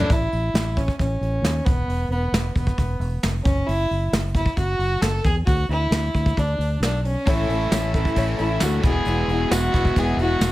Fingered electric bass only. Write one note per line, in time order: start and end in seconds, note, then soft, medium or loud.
0.10 0.26 A1 medium
0.33 0.49 A1 medium
0.54 0.87 A1 medium
1.00 1.16 A1 medium
1.21 1.38 A1 medium
1.42 1.59 D#2 medium
1.67 1.83 E1 medium
1.88 2.05 E1 medium
2.08 2.26 E1 medium
2.32 2.49 E1 medium
2.55 2.72 E1 medium
2.78 2.95 E1 medium
2.99 3.17 E1 medium
3.23 3.40 F1 medium
3.45 3.62 F#1 medium
3.68 3.85 F#1 medium
3.91 4.07 F#1 medium
4.12 4.46 F#1 medium
4.57 4.74 F#1 medium
4.79 4.96 F#1 medium
5.01 5.19 F#1 medium
5.25 5.42 E2 medium
5.47 5.64 D2 medium
5.69 5.86 D2 medium
5.91 6.08 D2 medium
6.15 6.32 D2 medium
6.38 6.54 D2 medium
6.58 6.76 D2 medium
6.80 7.15 B1 medium
7.27 7.44 A1 medium
7.49 7.66 A1 medium
7.71 8.05 A1 medium
8.16 8.33 A1 medium
8.39 8.56 A1 medium
8.62 8.79 D2 medium
8.83 9.01 E1 medium
9.06 9.23 E1 medium
9.28 9.45 E1 medium
9.51 9.68 E1 medium
9.74 9.91 E1 medium
9.96 10.13 E1 medium
10.16 10.34 E1 medium
10.40 10.52 E1 medium